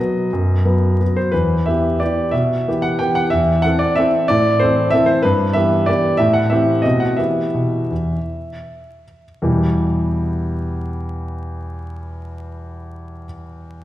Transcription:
0.00 0.29 F#3 soft
0.00 0.30 B3 soft
0.00 0.30 B4 soft
0.00 1.18 D#5 medium
0.33 0.65 F#2 soft
0.65 0.97 F#3 soft
0.65 0.97 B3 soft
0.65 0.97 B4 soft
1.00 1.31 F#3 soft
1.00 1.31 B3 soft
1.00 1.30 B4 soft
1.16 1.34 C5 medium
1.31 1.66 E2 soft
1.31 1.66 B4 medium
1.66 1.97 E3 soft
1.66 1.98 B3 soft
1.66 1.98 G4 soft
1.66 2.00 E5 medium
2.00 2.31 E3 soft
2.00 2.31 B3 soft
2.00 2.32 G4 soft
2.00 2.33 D5 medium
2.31 2.66 B2 soft
2.31 2.83 E5 medium
2.68 2.98 E3 soft
2.68 2.98 B3 soft
2.68 2.98 G4 soft
2.82 3.00 F#5 medium
2.99 3.29 E3 soft
2.99 3.29 B3 soft
2.99 3.29 G4 soft
2.99 3.16 G5 medium
3.15 3.32 F#5 medium
3.30 3.64 E2 medium
3.30 3.63 E5 medium
3.62 3.94 E3 soft
3.62 3.94 C4 soft
3.62 3.95 A4 soft
3.62 3.80 F#5 medium
3.79 3.97 D5 medium
3.96 4.26 E3 soft
3.96 4.27 C4 soft
3.96 4.27 A4 soft
3.96 4.28 E5 medium
4.28 4.60 A2 medium
4.28 4.60 D5 medium
4.59 4.90 E3 soft
4.59 4.90 C4 soft
4.59 4.91 A4 soft
4.59 4.92 C5 medium
4.90 5.21 E3 soft
4.90 5.21 C4 soft
4.90 5.22 A4 soft
4.90 5.07 E5 medium
5.06 5.23 C5 medium
5.23 5.55 G2 medium
5.23 5.55 B4 medium
5.53 5.85 E3 soft
5.53 5.85 B3 soft
5.53 5.86 G4 soft
5.53 5.87 E5 medium
5.86 6.17 E3 soft
5.86 6.17 B3 soft
5.86 6.17 G4 soft
5.86 6.19 D5 medium
6.17 6.50 A2 medium
6.17 6.34 E5 medium
6.33 6.50 F#5 medium
6.50 6.81 E3 soft
6.50 6.81 C4 soft
6.50 6.82 G4 soft
6.50 6.83 E5 medium
6.82 7.17 B2 soft
6.82 7.15 A3 soft
6.82 7.16 C4 soft
6.82 7.16 F#4 soft
6.82 7.00 D#5 medium
7.00 7.18 F#5 medium
7.17 7.43 E3 soft
7.17 7.47 B3 soft
7.17 7.47 G4 soft
7.17 9.22 E5 medium
7.54 7.80 B2 soft
7.91 8.16 E2 soft
9.42 13.23 E2 soft
9.42 13.24 B2 soft
9.42 13.24 G3 soft
9.42 13.24 B3 soft
9.42 13.24 E4 soft
9.42 13.24 G4 soft

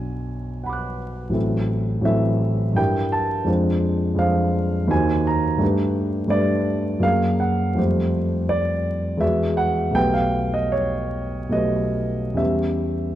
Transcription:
0.00 1.28 B1 soft
0.00 1.29 F#3 soft
0.00 1.29 B3 soft
0.00 1.30 D4 soft
0.00 1.31 F#4 soft
0.00 0.98 G#5 medium
0.64 1.31 F#5 soft
0.64 1.33 B5 soft
0.70 1.34 D6 soft
0.70 1.36 F#6 soft
1.29 2.00 A1 soft
1.29 2.01 F#3 soft
1.29 2.02 C4 soft
1.29 2.03 E4 soft
1.34 2.04 A4 soft
2.01 2.73 A1 soft
2.01 2.74 F#3 soft
2.01 2.74 C4 soft
2.01 2.75 E4 soft
2.01 2.77 E5 medium
2.05 2.75 A4 soft
2.73 3.43 G2 soft
2.73 3.44 G3 soft
2.73 3.44 D4 soft
2.73 3.45 E4 soft
2.73 3.12 G5 medium
2.78 3.45 A#4 soft
3.12 3.48 A5 medium
3.44 4.13 F2 soft
3.44 4.15 G#3 soft
3.44 4.16 D4 soft
3.44 4.17 F4 soft
3.49 4.17 C5 soft
4.15 4.87 F2 soft
4.15 4.88 G#3 soft
4.15 4.89 D4 soft
4.15 4.89 F4 soft
4.15 4.89 C5 soft
4.15 4.91 F5 medium
4.87 5.57 D#2 soft
4.87 5.58 A#3 soft
4.87 5.58 D#4 soft
4.87 5.59 F#4 soft
4.87 5.26 G#5 medium
4.92 5.59 C5 soft
5.27 5.61 A#5 medium
5.58 6.26 G2 soft
5.58 6.26 A3 soft
5.58 6.28 D4 soft
5.58 6.29 G4 soft
5.62 6.29 B4 soft
6.27 6.99 G2 soft
6.27 6.99 A3 soft
6.27 7.00 D4 soft
6.27 7.01 G4 soft
6.27 7.01 B4 soft
6.27 7.03 D5 medium
7.00 7.74 F#2 soft
7.00 7.74 F#3 soft
7.00 7.75 A#3 soft
7.00 7.76 G#4 soft
7.00 7.76 A#4 soft
7.00 7.40 F5 medium
7.40 7.78 F#5 soft
7.74 9.16 F2 soft
7.74 9.17 G3 soft
7.74 9.17 A3 soft
7.74 9.18 G4 soft
7.79 9.18 C5 soft
8.49 9.21 D5 medium
9.17 9.91 E2 soft
9.17 9.92 G#3 soft
9.17 9.92 B3 soft
9.17 9.93 F#4 soft
9.17 9.93 G#4 soft
9.17 9.58 E5 medium
9.57 9.95 F#5 medium
9.91 11.48 B1 soft
9.91 11.48 A3 soft
9.91 11.49 B3 soft
9.91 11.49 G4 soft
9.91 10.14 G5 medium
9.95 11.50 B4 soft
10.14 10.53 F5 medium
10.54 10.73 D#5 medium
10.72 11.53 C#5 medium
11.49 12.34 B1 soft
11.49 12.35 A3 soft
11.49 12.35 B3 soft
11.49 12.36 G4 soft
11.49 12.38 D#5 medium
11.54 12.36 B4 soft
12.34 13.15 E2 soft
12.34 13.15 G3 soft
12.34 13.15 C#4 soft
12.34 13.15 G4 soft
12.34 13.15 E5 medium
12.38 13.15 B4 soft

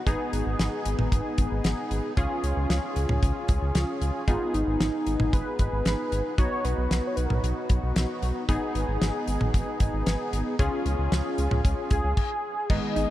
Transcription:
0.07 0.16 G#1 loud
0.07 2.13 B3 medium
0.07 2.13 D#4 medium
0.07 2.13 G#4 medium
0.07 kick loud
0.07 closed hi-hat medium
0.33 0.43 G#1 loud
0.33 closed hi-hat medium
0.46 0.56 G#1 medium
0.59 0.69 G#1 loud
0.59 snare loud
0.59 closed hi-hat medium
0.85 0.95 G#1 loud
0.85 closed hi-hat medium
0.99 1.09 G#1 medium
0.99 mid tom medium
1.12 1.22 G#1 loud
1.12 kick medium
1.12 closed hi-hat medium
1.38 1.48 G#1 loud
1.38 kick medium
1.38 closed hi-hat medium
1.51 1.61 G#1 loud
1.64 1.74 G#1 loud
1.64 snare loud
1.64 closed hi-hat medium
1.91 2.01 G#1 medium
1.91 closed hi-hat medium
2.17 2.27 C#2 loud
2.17 4.24 C#4 medium
2.17 4.24 F4 medium
2.17 4.24 G#4 medium
2.17 kick loud
2.17 closed hi-hat medium
2.43 2.53 C#2 medium
2.43 closed hi-hat medium
2.57 2.66 C#2 medium
2.70 2.80 C#2 loud
2.70 snare loud
2.70 closed hi-hat medium
2.96 3.06 C#2 loud
2.96 closed hi-hat medium
3.09 3.19 C#2 loud
3.09 mid tom medium
3.23 3.32 C#2 loud
3.23 kick medium
3.23 closed hi-hat medium
3.48 3.59 C#2 loud
3.48 kick medium
3.48 closed hi-hat medium
3.62 3.72 C#2 loud
3.75 3.85 C#2 loud
3.75 snare loud
3.75 closed hi-hat medium
4.01 4.11 C#2 medium
4.01 closed hi-hat medium
4.28 4.38 G#1 loud
4.28 6.34 B3 medium
4.28 6.34 D#4 medium
4.28 4.56 F4 medium
4.28 6.34 G#4 medium
4.28 kick loud
4.28 closed hi-hat medium
4.54 4.64 G#1 medium
4.54 5.32 D#4 medium
4.54 closed hi-hat medium
4.67 4.77 G#1 medium
4.80 4.90 G#1 loud
4.80 snare loud
4.80 closed hi-hat medium
5.07 5.16 G#1 loud
5.07 closed hi-hat medium
5.20 5.30 G#1 loud
5.20 mid tom medium
5.33 5.43 G#1 loud
5.33 5.57 B4 loud
5.33 kick medium
5.33 closed hi-hat medium
5.59 5.69 G#1 loud
5.59 6.34 B4 loud
5.59 kick medium
5.59 closed hi-hat medium
5.72 5.82 G#1 loud
5.85 5.95 G#1 loud
5.85 snare loud
5.85 closed hi-hat medium
6.12 6.22 G#1 loud
6.12 closed hi-hat medium
6.38 6.48 B1 loud
6.38 8.45 B3 medium
6.38 8.45 D#4 medium
6.38 8.45 F#4 medium
6.38 6.66 C#5 loud
6.38 kick loud
6.38 closed hi-hat medium
6.65 6.74 B1 loud
6.65 7.09 B4 loud
6.65 closed hi-hat medium
6.78 6.87 B1 medium
6.91 7.01 B1 loud
6.91 snare loud
6.91 closed hi-hat medium
7.07 7.18 C#5 medium
7.16 7.27 B1 medium
7.16 7.27 B4 medium
7.16 closed hi-hat medium
7.25 7.36 A#4 medium
7.30 7.40 B1 medium
7.30 mid tom medium
7.34 7.44 B4 medium
7.43 7.53 B1 loud
7.43 closed hi-hat medium
7.69 7.80 B1 loud
7.69 kick medium
7.69 closed hi-hat medium
7.83 7.93 B1 loud
7.96 8.06 B1 loud
7.96 snare loud
7.96 closed hi-hat medium
8.22 8.32 B1 medium
8.22 closed hi-hat medium
8.49 8.59 G#1 loud
8.49 10.55 B3 medium
8.49 10.55 D#4 medium
8.49 10.55 G#4 medium
8.49 kick loud
8.49 closed hi-hat medium
8.75 8.85 G#1 loud
8.75 closed hi-hat medium
8.88 8.98 G#1 loud
9.01 9.11 G#1 loud
9.01 snare loud
9.01 closed hi-hat medium
9.28 9.37 G#1 loud
9.28 closed hi-hat medium
9.41 9.51 G#1 medium
9.41 mid tom medium
9.54 9.64 G#1 loud
9.54 kick medium
9.54 closed hi-hat medium
9.80 9.90 G#1 loud
9.80 kick medium
9.80 closed hi-hat medium
9.93 10.03 G#1 loud
10.06 10.16 G#1 loud
10.06 snare loud
10.06 closed hi-hat medium
10.33 10.43 G#1 loud
10.33 closed hi-hat medium
10.59 10.69 C#2 loud
10.59 12.14 C#4 medium
10.59 12.14 F4 medium
10.59 12.14 G#4 medium
10.59 kick loud
10.59 closed hi-hat medium
10.86 10.95 C#2 loud
10.86 closed hi-hat medium
10.99 11.09 C#2 medium
11.12 11.22 C#2 loud
11.12 snare loud
11.12 closed hi-hat medium
11.38 11.48 C#2 loud
11.38 closed hi-hat medium
11.51 11.61 C#2 loud
11.51 mid tom medium
11.65 11.74 C#2 loud
11.65 kick medium
11.65 closed hi-hat medium
11.90 12.01 C#2 loud
11.90 12.71 G#4 medium
11.90 kick medium
11.90 closed hi-hat medium
12.04 12.14 C#2 loud
12.17 kick loud
12.17 crash medium
12.70 12.80 G#1 loud
12.70 13.10 D#3 medium
12.70 12.79 G#3 medium
12.70 13.10 G#3 medium
12.70 13.10 B3 medium
12.70 13.10 D#4 medium
12.70 13.10 G#4 medium
12.70 13.10 D#5 loud
12.70 kick loud
12.70 crash medium
12.83 12.92 B3 medium
12.96 13.06 G#1 medium
12.96 13.05 D#4 medium
12.96 closed hi-hat medium

